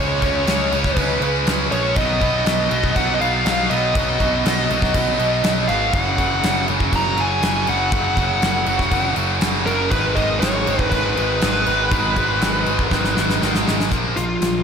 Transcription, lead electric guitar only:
Already playing: C#5
0.99 B4
1.71 C#5
1.97 D#5
2.96 F#5
3.14 D#5
3.21 F5
3.70 D#5
5.68 F5
5.95 F#5
6.96 A#5
7.20 G#5
7.69 F#5
9.66 A#4
9.91 B4
10.15 D#5
10.40 C#5
10.82 B4
10.90 B4
14.17 F4

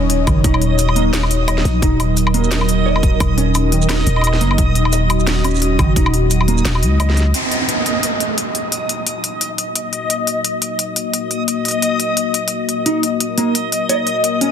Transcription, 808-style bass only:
Already playing: D#1
0.27 F#1
0.44 D#1
1.65 A#1
1.82 D#1
3.20 D#1
4.07 D#1
4.41 F#1
4.58 D#1
5.79 F#1
5.96 D#1
6.65 D#1
6.82 C#2

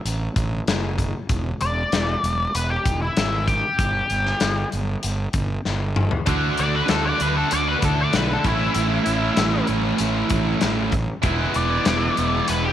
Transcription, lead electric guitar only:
1.62 D5
2.55 B4
2.70 G4
3.02 E4
3.48 G4
6.60 D5
6.75 B4
6.90 A4
7.05 D5
7.21 B4
7.37 A4
7.52 D5
7.68 B4
7.85 A4
8.01 D5
8.16 B4
8.33 A4
8.47 E4
11.56 D5
12.49 B4
12.65 G4

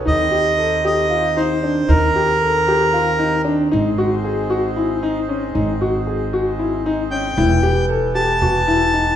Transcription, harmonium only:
0.06 D#3 C4 G4
3.73 G#3 D#4
7.36 E3 B3 G4

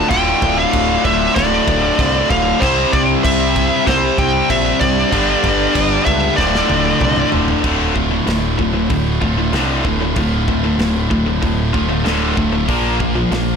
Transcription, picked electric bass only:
0.10 D1
0.42 D1
0.74 D1
1.05 D1
1.36 D1
1.68 D1
1.99 C2
2.30 D1
2.62 C2
2.93 C2
3.24 C2
3.87 C2
4.18 C2
4.50 A#1
4.81 C2
5.12 G1
5.44 G1
5.75 G1
6.07 C#2
6.38 D1
6.70 D1
7.01 C2
7.32 D1
7.64 D1
8.27 D1
8.59 D1
8.90 D1
9.22 D1
9.53 C2
9.85 D1
10.17 D1
10.48 D1
10.79 D1
11.11 D1
11.43 D1
11.74 D1
12.05 D1
12.37 D1
12.69 A#1
13.32 A#1

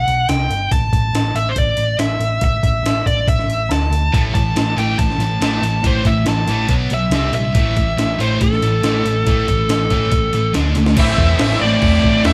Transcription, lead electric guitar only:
Already playing: F#5
0.29 G5
0.72 A5
1.36 E5
1.49 C5
1.58 D5
1.99 E5
2.44 E5
3.07 D5
3.29 E5
3.72 A5
4.15 A5
4.34 A5
4.79 G5
4.99 A5
5.87 C5
6.07 E5
6.28 A5
6.94 E5
7.35 E5
8.21 C5
8.43 A4
11.00 E5
11.42 E5
11.61 D5
12.26 E5

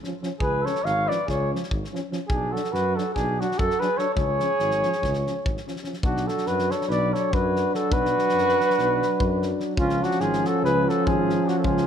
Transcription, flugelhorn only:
0.42 B4
0.65 C#5
0.85 F5
1.08 D5
1.30 C#5
2.27 G#4
2.52 A4
2.72 B4
2.96 A4
3.14 G#4
3.40 F#4
3.59 A4
3.79 B4
3.97 C#5
4.14 C#5
6.05 F#4
6.27 A4
6.47 B4
6.71 C#5
6.90 D5
7.13 C#5
7.34 B4
7.75 A4
7.92 B4
9.78 F4
10.03 F#4
10.21 G#4
10.47 A4
10.65 B4
10.89 A4
11.07 G#4
11.48 F#4
11.58 A4
11.66 G#4

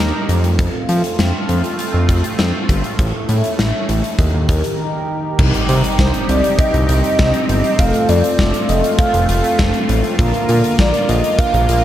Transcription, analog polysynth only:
5.39 G3 C4 D#4 G4
7.79 A3 C4 F4 A4
10.19 D3 A#3 F4 A#4

